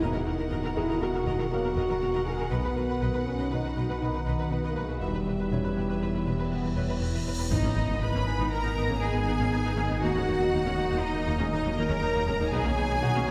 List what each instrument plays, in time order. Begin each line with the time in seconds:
Already playing: ambient pad B2 B3, grand piano B4
0.01 sub bass D#1, double bass section D#2, cello section D#3, trombone section F#3 A#3, french horn section D#4, ambient pad F#4 A#4, viola section A#4, violin section F#5
0.13 cello section D#3, violin section A#4, viola section A#4
0.25 double bass section D#2, cello section D#3, violin section F#4, viola section A#4
0.37 cello section D#3, violin section A#4, viola section A#4
0.50 double bass section D#2, cello section D#3, viola section A#4, violin section D#5
0.63 cello section D#3, violin section A#4, viola section A#4
0.76 double bass section D#2, cello section D#3, french horn section E4, violin section F#4, grand piano G#4, viola section A#4
0.88 cello section D#3, viola section A#4, violin section D#5
1.01 double bass section D#2, cello section D#3, french horn section F#4, violin section A#4, viola section A#4
1.14 cello section D#3, violin section F#4, viola section A#4
1.26 double bass section D#2, cello section D#3, viola section A#4, violin section D#5
1.39 cello section D#3, viola section A#4, violin section A#4
1.50 double bass section D#2, cello section D#3, trombone section F#3 A#3, french horn section F#4, violin section F#4, viola section A#4
1.63 cello section D#3, violin section A#4, viola section A#4
1.76 double bass section D#2, cello section D#3, viola section A#4, violin section D#5
1.89 cello section D#3, violin section A#4, viola section A#4
2.01 double bass section D#2, cello section D#3, violin section F#4, viola section A#4
2.13 cello section D#3, viola section A#4, violin section D#5
2.25 double bass section D#2, cello section D#3, french horn section G#4, violin section A#4, viola section A#4
2.39 cello section D#3, violin section F#4, viola section A#4
2.50 sub bass B1, double bass section B1, cello section B2, ambient pad D#3 D#4, trombone section D#3 B3, french horn section B3, viola section B4, violin section D#5
2.63 cello section B2, violin section B4, viola section B4
2.75 double bass section B1, cello section B2, violin section F#4, grand piano A#4, viola section B4
2.89 cello section B2, viola section B4, violin section B4
3.01 double bass section B1, cello section B2, viola section B4, violin section D#5
3.14 cello section B2, viola section B4, violin section B4
3.25 double bass section B1, cello section B2, french horn section C#4, violin section F#4, viola section B4
3.38 cello section B2, viola section B4, violin section D#5
3.50 double bass section B1, cello section B2, french horn section D#4, violin section B4, viola section B4
3.64 cello section B2, violin section F#4, viola section B4
3.76 double bass section B1, cello section B2, viola section B4, violin section D#5
3.89 cello section B2, viola section B4, violin section B4
4.01 double bass section B1, cello section B2, trombone section D#3 B3, french horn section D#4, violin section F#4, viola section B4
4.14 cello section B2, violin section B4, viola section B4
4.26 double bass section B1, cello section B2, viola section B4, violin section D#5
4.38 cello section B2, violin section B4, viola section B4
4.51 double bass section B1, cello section B2, french horn section B3, violin section F#4, viola section B4
4.63 cello section B2, viola section B4, violin section D#5
4.68 french horn section A#3
4.76 double bass section B1, cello section B2, viola section B4, violin section B4
4.84 french horn section G#3
4.88 cello section B2, violin section F#4, viola section B4
5.01 sub bass E1, double bass section E1, cello section E2, trombone section E3 B3, ambient pad E3 B3 E4, french horn section G3, viola section B4, violin section E5, cymbal swell
5.13 cello section E2, violin section B4, viola section B4
5.26 double bass section E1, cello section E2, violin section G4, viola section B4
5.39 cello section E2, violin section B4, viola section B4
5.51 double bass section E1, cello section E2, grand piano C#4 C#5, viola section B4, violin section E5
5.64 cello section E2, violin section B4, viola section B4
5.76 double bass section E1, cello section E2, violin section G4, viola section B4
5.89 cello section E2, viola section B4, violin section E5
6.02 double bass section E1, cello section E2, viola section B4, violin section B4
6.14 cello section E2, violin section G4, viola section B4
6.26 double bass section E1, cello section E2, viola section B4, violin section E5
6.39 cello section E2, viola section B4, violin section B4
6.51 double bass section E1, cello section E2, trombone section E3 B3, violin section G4, viola section B4
6.63 cello section E2, viola section B4, violin section B4
6.76 double bass section E1, cello section E2, viola section B4, grand piano C#5, violin section E5
6.88 cello section E2, violin section B4, viola section B4
7.01 double bass section E1, cello section E2, violin section G4, viola section B4
7.14 cello section E2, viola section B4, violin section E5
7.26 double bass section E1, cello section E2, viola section B4, violin section B4
7.39 cello section E2, violin section G4, viola section B4
7.50 double bass section G#1, sub bass G#1, ambient pad D#3 B3 D#4 D#5, trombone section D#3, french horn section B3 D#4, viola section B3 D#4, cello section D#4, violin section D#5, impact
7.63 double bass section G#1, viola section A#3 C#4
7.76 double bass section G#1, viola section B3 D#4
7.88 double bass section G#1, viola section G#3 B3
8.01 double bass section G#1, viola section B3 D#4, cello section B4, violin section B5
8.13 double bass section G#1, viola section A#3 C#4
8.26 double bass section G#1, viola section B3 D#4, grand piano G#5
8.38 double bass section G#1, viola section B3 D#4
8.51 cello section A#4, violin section A#5
8.63 double bass section G#1, viola section B3 D#4
8.76 double bass section G#1, viola section B3 D#4
8.89 double bass section G#1, viola section A#3 C#4
9.01 double bass section G#1, viola section B3 D#4, cello section G#4, violin section G#5
9.14 double bass section G#1, viola section G#3 B3
9.26 double bass section G#1, viola section B3 D#4
9.39 double bass section G#1, viola section A#3 C#4
9.52 double bass section G#1, viola section B3 D#4
9.64 double bass section G#1, viola section B3 D#4
9.77 double bass section G#1, viola section A#3 C#4
9.90 double bass section G#1, viola section B3 D#4
10.01 sub bass D#1, double bass section D#2, trombone section F#3, ambient pad A#3, french horn section A#3, viola section A#3 D#4, cello section F#4, violin section F#5
10.15 double bass section D#2, viola section G#3 C#4
10.27 double bass section D#2, viola section A#3 D#4
10.40 double bass section D#2, viola section F#3 A#3
10.53 double bass section D#2, viola section A#3 D#4
10.65 double bass section D#2, viola section G#3 C#4
10.78 double bass section D#2, viola section A#3 D#4
10.90 double bass section D#2, viola section A#3 D#4
11.01 cello section D#4, violin section D#5
11.15 double bass section D#2, viola section A#3 D#4
11.27 double bass section D#2, viola section A#3 D#4
11.39 double bass section D#2, viola section G#3 C#4
11.52 double bass section D#2, viola section A#3 D#4, cello section D#4, violin section D#5
11.64 double bass section D#2, viola section F#3 A#3
11.77 double bass section D#2, viola section A#3 D#4, cello section A#4, violin section A#5
11.90 double bass section D#2, viola section G#3 C#4
12.02 double bass section D#2, viola section A#3 D#4
12.14 double bass section D#2, viola section A#3 D#4
12.27 double bass section D#2, viola section G#3 C#4
12.39 double bass section D#2, viola section A#3 D#4
12.51 sub bass B1, double bass section B1, trombone section B2, ambient pad F#3 B3 D#4 B4, french horn section B3 D#4, viola section B3 D#4, cello section G#4, violin section G#5
12.64 double bass section B1, viola section A#3 C#4
12.77 double bass section B1, viola section B3 D#4
12.89 double bass section B1, viola section F#3 B3
13.02 double bass section B1, viola section B3 D#4, grand piano F#4 F#5
13.14 double bass section B1, viola section A#3 C#4
13.27 double bass section B1, viola section B3 D#4